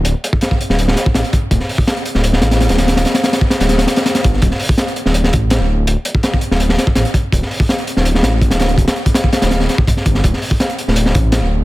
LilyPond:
<<
  \new Staff \with { instrumentName = "Detuned saw bass" } { \clef bass \time 4/4 \key c \dorian \tempo 4 = 165 d,,16 r4. d,,8. r8 a,,16 r8. | d,,16 r4. d,,8. a,,8. d,,8. | d,,16 r4. d,,8. r4 g,,8 | d,,16 r4. d,,8. a,,8. d,,8. |
d,,16 r4. d,,8. r8 a,,16 r8. | d,,16 r4. d,,8. a,,8. d,,8. | d,,16 r4. d,,8. r4 g,,8 | d,,16 r4. d,,8. a,,8. d,,8. | }
  \new DrumStaff \with { instrumentName = "Drums" } \drummode { \time 4/4 hh8 hh16 bd16 <hh sn>16 bd16 hh16 sn16 hh16 sn16 <hh sn>16 bd16 <hh sn>16 hh16 <hh bd>8 | <hh bd>16 sn16 hho16 bd16 <hh sn>16 hh16 hh16 sn16 hh16 sn16 <hh sn>16 <hh sn>16 <hh sn>16 <hh sn>16 <hh sn>16 <hh sn>16 | <hh sn>16 <hh sn>16 <hh sn>16 <hh sn>16 <hh sn>16 bd16 <hh sn>16 <hh sn>16 <hh sn>16 <hh sn>16 <hh sn>16 <hh sn>16 <hh sn>16 <hh sn>16 <hh bd>16 sn16 | <hh bd>16 sn16 hho16 bd16 <hh sn>16 hh16 hh16 sn16 hh16 sn16 <hh bd>8 <hh sn>4 |
hh8 hh16 bd16 <hh sn>16 bd16 hh16 sn16 hh16 sn16 <hh sn>16 bd16 <hh sn>16 hh16 <hh bd>8 | <hh bd>16 sn16 hho16 bd16 <hh sn>16 hh16 hh16 sn16 hh16 sn16 <hh sn>8 <hh bd>16 <hh sn>16 <hh sn>16 hh16 | <hh bd>16 <hh sn>16 hh16 <hh bd>16 <hh sn>16 bd16 <hh sn>16 <hh sn>16 <hh sn>16 sn16 <hh sn>16 bd16 <hh bd>16 sn16 <hh bd>16 sn16 | <hh bd>16 sn16 hho16 bd16 <hh sn>16 hh16 hh16 sn16 hh16 sn16 <hh bd>8 <hh sn>4 | }
>>